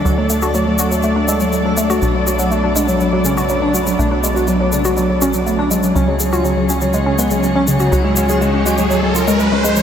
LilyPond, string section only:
\new Staff \with { instrumentName = "String section" } { \time 4/4 \key b \dorian \tempo 4 = 122 << { <fis d' a' d''>1~ | <fis d' a' d''>1~ | <fis d' a' d''>1 | <fis cis' gis' cis''>1~ |
<fis cis' gis' cis''>1 | } \\ { a1 | b1~ | b1 | gis1~ |
gis1 | } >> }